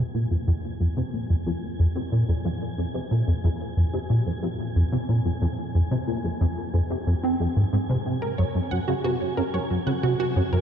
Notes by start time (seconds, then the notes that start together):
Already playing: G#5
0.14 A#2
0.31 F2
0.47 F2
0.80 F2
0.97 C3
1.13 A#2
1.30 F2
1.46 F2
1.79 F2
1.95 C3
2.12 A#2
2.28 F2
2.45 F2
2.78 F2
2.94 C3
3.11 A#2
3.27 F2
3.44 F2
3.77 F2
3.93 C3
4.10 A#2
4.26 F2
4.43 F2
4.76 F2
4.92 C3
5.09 A#2
5.25 F2
5.42 F2
5.75 F2
5.91 C3
6.07 A#2
6.24 F2
6.41 F2
6.74 F2
6.90 C3
7.07 F2
7.23 C4
7.40 F2
7.56 G#2
7.73 G#2
7.89 C3
8.06 C3
8.22 A#4
8.38 F#2 C#5
8.55 F#2
8.71 F#2 F#5
8.88 C#3 F#4
9.04 C3 F#4
9.37 F#2 A#4
9.54 F#2 C#5
9.70 F#2
9.86 C#3 F#5
10.03 C3 F#4
10.20 F#4
10.36 F#2
10.52 F#2 A#4